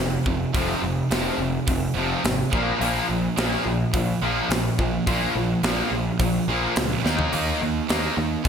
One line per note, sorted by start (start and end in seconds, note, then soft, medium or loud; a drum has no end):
0.00 0.16 F1 medium
0.00 0.24 F2 medium
0.00 0.24 C3 medium
0.26 0.44 F1 medium
0.26 0.52 F2 medium
0.26 0.52 C3 medium
0.26 kick medium
0.54 0.72 F1 medium
0.54 0.81 F2 medium
0.54 0.81 C3 medium
0.54 0.82 F3 medium
0.54 kick loud
0.54 open hi-hat medium
0.82 1.00 F1 medium
0.82 1.08 F2 medium
0.82 1.08 C3 medium
1.10 1.29 F1 medium
1.10 1.38 F2 medium
1.10 1.38 C3 medium
1.10 1.38 F3 medium
1.10 snare loud
1.10 open hi-hat medium
1.38 1.57 F1 medium
1.38 1.65 F2 medium
1.38 1.65 C3 medium
1.67 1.86 F1 medium
1.67 1.93 F2 medium
1.67 1.94 C3 medium
1.67 kick loud
1.67 open hi-hat medium
1.95 2.13 F1 medium
1.95 2.23 F2 medium
1.95 2.23 C3 medium
1.95 2.24 F3 loud
2.24 2.42 G#1 medium
2.24 2.50 F2 medium
2.24 2.50 C3 medium
2.24 snare loud
2.24 open hi-hat medium
2.53 2.71 A#1 medium
2.53 2.79 A#2 medium
2.53 2.80 F3 medium
2.53 2.80 A#3 medium
2.53 kick loud
2.81 2.99 A#1 medium
2.81 3.07 A#2 medium
2.81 3.08 F3 medium
2.81 3.08 A#3 loud
2.81 open hi-hat medium
3.10 3.28 A#1 medium
3.10 3.35 A#2 medium
3.10 3.35 F3 medium
3.37 3.56 A#1 medium
3.37 3.64 A#2 medium
3.37 3.64 F3 medium
3.37 3.64 A#3 medium
3.37 snare loud
3.37 open hi-hat soft
3.66 3.84 A#1 medium
3.66 3.91 A#2 medium
3.66 3.92 F3 medium
3.94 4.12 A#1 medium
3.94 4.19 A#2 medium
3.94 4.20 F3 medium
3.94 kick loud
3.94 open hi-hat medium
4.22 4.40 A#1 medium
4.22 4.49 A#2 medium
4.22 4.49 F3 loud
4.22 4.49 A#3 medium
4.49 4.68 A#1 medium
4.49 4.76 A#2 medium
4.49 4.76 F3 medium
4.49 snare loud
4.49 open hi-hat soft
4.79 4.97 A#1 medium
4.79 5.04 A#2 medium
4.79 5.04 F3 medium
4.79 kick medium
5.06 5.25 A#1 medium
5.06 5.33 A#2 medium
5.06 5.33 F3 medium
5.06 5.34 A#3 loud
5.06 kick loud
5.06 open hi-hat soft
5.35 5.53 A#1 medium
5.35 5.60 A#2 medium
5.35 5.60 F3 medium
5.63 5.81 A#1 medium
5.63 5.90 A#2 medium
5.63 5.90 F3 medium
5.63 5.90 A#3 medium
5.63 snare medium
5.63 open hi-hat soft
5.91 6.09 A#1 medium
5.91 6.17 A#2 medium
5.91 6.17 F3 medium
6.19 6.38 A#1 medium
6.19 6.45 A#2 medium
6.19 6.45 F3 medium
6.19 kick loud
6.19 open hi-hat medium
6.48 6.66 A#1 medium
6.48 6.75 A#2 medium
6.48 6.75 F3 medium
6.48 6.75 A#3 medium
6.76 6.95 C#2 medium
6.76 7.01 A#2 medium
6.76 7.02 F3 medium
6.76 snare loud
6.76 open hi-hat medium
7.04 7.22 D#2 medium
7.04 7.30 D#3 medium
7.04 7.31 A#3 medium
7.04 7.31 D#4 medium
7.04 snare medium
7.19 floor tom medium
7.32 7.51 D#2 medium
7.32 7.58 D#3 medium
7.32 7.59 A#3 medium
7.32 7.59 D#4 medium
7.32 open hi-hat medium
7.62 7.80 D#2 medium
7.62 7.86 D#3 medium
7.62 7.86 A#3 medium
7.89 8.08 D#2 medium
7.89 8.15 D#3 medium
7.89 8.16 A#3 medium
7.89 8.16 D#4 medium
7.89 snare loud
7.89 open hi-hat soft
8.17 8.35 D#2 medium
8.17 8.42 D#3 medium
8.17 8.42 A#3 medium
8.44 8.48 D#2 medium
8.44 8.48 D#3 medium
8.44 8.48 A#3 medium
8.44 kick loud